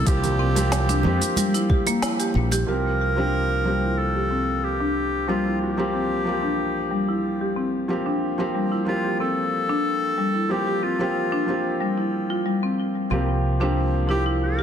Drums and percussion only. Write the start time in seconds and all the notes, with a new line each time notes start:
0.07 kick, open hi-hat, cabasa
0.24 open hi-hat, low conga, cabasa
0.56 open hi-hat, high conga, cabasa
0.72 snare, open hi-hat, cabasa
0.89 open hi-hat, muted conga, cabasa
1.03 high conga, low conga
1.21 open hi-hat, muted conga, cabasa
1.36 open hi-hat, high conga, cabasa
1.54 open hi-hat, cabasa
1.70 kick, high conga
1.86 open hi-hat, muted conga, cabasa
2.02 snare, open hi-hat, cabasa
2.20 open hi-hat, cabasa
2.34 muted conga
2.52 open hi-hat, muted conga, cabasa